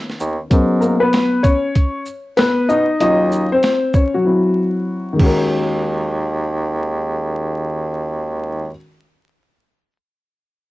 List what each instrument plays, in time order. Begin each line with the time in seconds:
Already playing: grand piano D#3 B3 C#4
0.10 snare
0.20 bassoon D#2, shaker
0.50 bassoon G#2, grand piano F#3 B3 C#4 A#4, kick, closed hi-hat
0.81 grand piano A#3 A#4, shaker
1.00 grand piano B3 B4
1.13 snare, closed hi-hat
1.43 grand piano C#4 C#5, kick, closed hi-hat, shaker
1.75 kick, closed hi-hat
2.06 shaker
2.37 grand piano B3 B4, snare, closed hi-hat
2.69 bassoon B2, grand piano D#4 D#5, shaker
3.00 bassoon D#2, grand piano F#3 C#4 D#4 F4 D#5, closed hi-hat
3.32 shaker
3.52 grand piano C4 C5
3.63 snare, closed hi-hat
3.94 grand piano C#4 C#5, kick, shaker
4.14 grand piano F#3 F#4
4.25 grand piano F#3 C4 E4
5.13 grand piano D#3 G#3
5.19 bassoon D#2, grand piano C#4 F#4, kick, crash
5.26 grand piano A#4